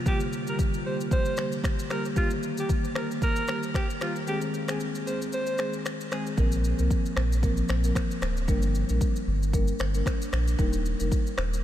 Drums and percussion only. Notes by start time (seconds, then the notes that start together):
0.06 kick, shaker
0.20 shaker
0.33 shaker
0.47 shaker
0.59 kick, shaker
0.74 shaker
1.01 shaker
1.11 kick, shaker
1.25 shaker
1.37 finger snap, cross-stick, shaker
1.52 shaker
1.64 finger snap, kick, cross-stick, shaker
1.79 shaker
1.90 finger snap, cross-stick, shaker
2.05 shaker
2.16 kick, shaker
2.30 shaker
2.43 shaker
2.57 shaker
2.69 kick, shaker
2.84 shaker
2.95 finger snap, cross-stick
3.11 shaker
3.22 kick, shaker
3.36 shaker
3.48 finger snap, cross-stick, shaker
3.63 shaker
3.74 finger snap, kick, cross-stick, shaker
3.90 shaker
4.01 finger snap, cross-stick, shaker
4.16 shaker
4.27 shaker
4.41 shaker
4.54 shaker
4.68 finger snap, cross-stick, shaker
4.80 shaker
4.95 shaker
5.07 shaker
5.22 shaker
5.33 shaker
5.46 shaker
5.58 finger snap, cross-stick, shaker
5.73 shaker
5.86 finger snap, cross-stick, shaker
6.01 shaker
6.12 finger snap, cross-stick, shaker
6.26 shaker
6.38 kick, shaker
6.52 shaker
6.64 shaker
6.79 shaker
6.91 kick, shaker
7.06 shaker
7.17 finger snap, cross-stick
7.32 shaker
7.43 kick, shaker
7.57 shaker
7.69 finger snap, cross-stick, shaker
7.84 shaker
7.95 finger snap, kick, cross-stick, shaker
8.11 shaker
8.22 finger snap, cross-stick, shaker
8.37 shaker
8.48 kick, shaker
8.62 shaker
8.75 shaker
8.89 shaker
9.01 kick, shaker
9.16 shaker
9.43 shaker
9.53 kick, shaker
9.68 shaker
9.79 finger snap, cross-stick, shaker
9.94 shaker
10.06 finger snap, kick, cross-stick, shaker
10.22 shaker
10.33 finger snap, cross-stick, shaker
10.48 shaker
10.59 kick, shaker
10.73 shaker
10.85 shaker
11.00 shaker
11.12 kick, shaker
11.27 shaker
11.38 finger snap, cross-stick
11.53 shaker